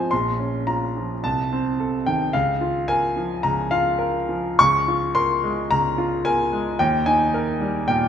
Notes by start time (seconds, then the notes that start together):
Already playing: G#2 F3 C4 F4 C5 D#5 F5 G#5
0.11 A#1 C6
0.39 C#4
0.67 F4 A#5
0.97 F3
1.24 C2 A5
1.53 C4
1.80 A4
2.06 D#3 G5
2.33 C#2 F5
2.61 F4
2.88 A#4 G#5
3.16 F3
3.43 C#2 A#5
3.71 F4 F5
3.99 A#4
4.29 F3
4.59 C#2 C#6
4.88 F4
5.15 A#4 C6
5.44 G#3
5.71 C#2 A#5
5.98 F4
6.25 A#4 G#5
6.53 G#3
6.79 D#2 G5
7.06 D#4 G#5
7.34 A#4
7.61 G3
7.88 A#2 G5